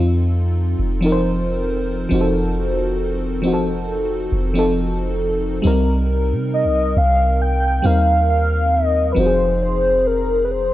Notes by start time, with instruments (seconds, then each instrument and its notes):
Already playing: 808-style bass F2, fm electric piano F3 C4 D#4 F4 A4
0.79 808-style bass F1
1.01 fm electric piano F3 C4 D#4
1.06 fm electric piano A#4
1.12 fm electric piano C5
2.09 808-style bass F1, fm electric piano F3 C4 D#4
2.14 fm electric piano F#4
2.21 fm electric piano A4
3.42 fm electric piano F3 C4 D#4
3.47 fm electric piano F#4
3.53 fm electric piano A4
4.32 808-style bass F1
4.54 fm electric piano F3 C4 D#4
4.59 fm electric piano A4
5.62 808-style bass C2, fm electric piano G3 C4 D#4
5.67 fm electric piano A#4
6.32 808-style bass C3
6.54 soft synth lead D#5
6.65 808-style bass C2
6.97 808-style bass C2, soft synth lead F5
7.42 soft synth lead G5
7.82 808-style bass D#2, fm electric piano G3 C4 D#4, soft synth lead F5
7.87 fm electric piano A#4
8.30 soft synth lead F5
8.74 soft synth lead D#5
9.12 fm electric piano F3, soft synth lead B4
9.16 808-style bass F1, fm electric piano C4 D#4 F#4, soft synth lead C5
9.26 fm electric piano G#4
9.62 soft synth lead C5
10.07 soft synth lead A#4
10.45 soft synth lead B4
10.51 soft synth lead C5